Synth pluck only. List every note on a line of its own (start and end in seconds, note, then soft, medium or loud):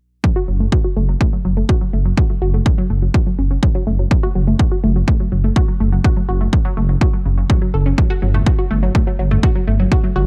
0.24 0.32 F#3 medium
0.36 0.41 F#4 medium
0.48 0.53 F#3 medium
0.60 0.68 A3 medium
0.72 0.80 F#4 medium
0.84 0.89 F#4 medium
0.97 1.08 A3 medium
1.09 1.16 F#3 medium
1.21 1.29 A3 medium
1.33 1.38 F#3 medium
1.45 1.50 F#3 medium
1.57 1.65 A3 medium
1.69 1.77 F#4 medium
1.81 1.86 F#3 medium
1.93 2.05 A3 medium
2.05 2.13 F#3 medium
2.17 2.22 F#4 medium
2.30 2.34 F#3 medium
2.42 2.50 F#4 medium
2.54 2.62 A3 medium
2.66 2.71 F#3 medium
2.78 2.86 F#3 loud
2.90 3.02 A3 medium
3.02 3.10 F#3 medium
3.14 3.19 F#4 medium
3.26 3.31 F#3 medium
3.38 3.46 C#4 medium
3.51 3.58 C#4 medium
3.63 3.67 F#3 medium
3.75 3.83 F#3 medium
3.87 3.98 A3 medium
3.99 4.07 F#3 medium
4.11 4.19 F#3 medium
4.23 4.28 F#4 loud
4.35 4.40 F#3 medium
4.47 4.55 A3 medium
4.59 4.67 F#4 medium
4.72 4.76 F#4 medium
4.84 4.95 A3 medium
4.96 5.04 F#3 medium
5.08 5.16 A3 medium
5.20 5.25 F#3 medium
5.32 5.37 F#3 medium
5.44 5.52 A3 medium
5.56 5.64 F#4 medium
5.68 5.73 F#3 medium
5.80 5.92 A3 medium
5.92 6.00 F#3 medium
6.05 6.09 F#4 medium
6.17 6.21 F#3 medium
6.29 6.37 F#4 medium
6.41 6.49 A3 medium
6.53 6.58 F#3 medium
6.65 6.73 F#3 loud
6.77 6.89 A3 medium
6.89 6.97 F#3 medium
7.01 7.06 F#4 medium
7.14 7.18 F#3 medium
7.26 7.36 C#3 medium
7.38 7.45 C#3 medium
7.50 7.58 F#3 medium
7.62 7.73 F#3 medium
7.74 7.85 A4 medium
7.86 7.91 C#4 medium
7.98 8.06 F#3 medium
8.10 8.15 F#4 loud
8.22 8.27 F#3 medium
8.34 8.42 A3 medium
8.46 8.54 F#4 medium
8.59 8.63 F#4 medium
8.71 8.82 A3 medium
8.83 8.91 F#3 medium
8.95 9.03 A3 medium
9.07 9.12 F#3 medium
9.19 9.24 F#3 medium
9.31 9.39 A3 medium
9.43 9.51 F#4 medium
9.55 9.60 F#3 medium
9.67 9.79 A3 medium
9.80 9.87 F#3 medium
9.92 9.96 F#4 medium
10.04 10.08 F#3 medium
10.16 10.24 F#4 medium